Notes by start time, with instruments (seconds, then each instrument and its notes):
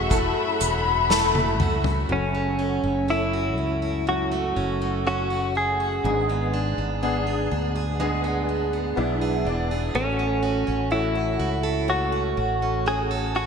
Already playing: fretless electric bass E1, steel-string acoustic guitar F#2 C#4 F#4, upright piano C#3 A3 E4 F#4 G#4, string section A3 E5 F#5, clean electric guitar F#4
0.10 upright piano A3 E4 A4, steel-string acoustic guitar A3, string section B5, kick, closed hi-hat
0.60 fretless electric bass E1, steel-string acoustic guitar C#4, closed hi-hat
1.09 upright piano A3 E4 A4, steel-string acoustic guitar A3, snare
1.35 high tom
1.60 fretless electric bass C#2, steel-string acoustic guitar F#4, mid tom
1.84 floor tom
2.08 fretless electric bass F#1, steel-string acoustic guitar F#2, upright piano C#3 A3 C#4 F#4, clean electric guitar C#4
2.35 steel-string acoustic guitar A3
2.59 steel-string acoustic guitar C#4
2.83 fretless electric bass F#1, steel-string acoustic guitar A3
3.08 upright piano A3 C#4 A4, steel-string acoustic guitar C#4, clean electric guitar E4
3.33 steel-string acoustic guitar F#4
3.58 fretless electric bass C#2, steel-string acoustic guitar C#4
3.82 steel-string acoustic guitar F#4
4.07 steel-string acoustic guitar F#2, upright piano A3 C#4 E4, clean electric guitar F#4
4.32 steel-string acoustic guitar A3
4.56 fretless electric bass F#1, steel-string acoustic guitar C#4
4.82 steel-string acoustic guitar A3
5.05 upright piano A3 C#4 F#4, steel-string acoustic guitar C#4, clean electric guitar F#4
5.30 steel-string acoustic guitar F#4
5.55 steel-string acoustic guitar C#4, clean electric guitar G#4
5.80 steel-string acoustic guitar F#4
6.04 fretless electric bass G#1, upright piano G#2 G#3 B3 D4 G#4, steel-string acoustic guitar G#3
6.29 steel-string acoustic guitar B3
6.54 steel-string acoustic guitar D4
6.77 fretless electric bass G#1, steel-string acoustic guitar B3
7.02 upright piano B3 D4 G#4, steel-string acoustic guitar D4
7.27 steel-string acoustic guitar G#4
7.51 fretless electric bass D2, steel-string acoustic guitar D4
7.76 steel-string acoustic guitar G#4
8.00 steel-string acoustic guitar G#3, upright piano B3 D4 G#4
8.24 steel-string acoustic guitar B3
8.49 steel-string acoustic guitar D4
8.73 steel-string acoustic guitar B3
8.96 fretless electric bass B1, upright piano B3 D4 E4 F#5, steel-string acoustic guitar D4
9.21 steel-string acoustic guitar G#4, upright piano E5
9.45 fretless electric bass E1, steel-string acoustic guitar D4, upright piano D5
9.71 steel-string acoustic guitar G#4
9.94 fretless electric bass A1, upright piano A2 A3 C#4 F#4, steel-string acoustic guitar A3, clean electric guitar C#4
10.19 steel-string acoustic guitar C#4
10.43 steel-string acoustic guitar F#4
10.67 fretless electric bass A1, steel-string acoustic guitar C#4
10.91 upright piano A3 C#4 F#4, clean electric guitar E4, steel-string acoustic guitar F#4
11.15 steel-string acoustic guitar A4
11.39 fretless electric bass C#2, steel-string acoustic guitar F#4
11.63 steel-string acoustic guitar A4
11.88 upright piano A3 C#4 F#4, steel-string acoustic guitar A3, clean electric guitar F#4
12.12 steel-string acoustic guitar C#4
12.37 fretless electric bass A1, steel-string acoustic guitar F#4
12.62 steel-string acoustic guitar C#4
12.86 upright piano A3 C#4 G#4, steel-string acoustic guitar F#4, clean electric guitar G#4
13.11 steel-string acoustic guitar A4
13.35 steel-string acoustic guitar F#4, clean electric guitar F#4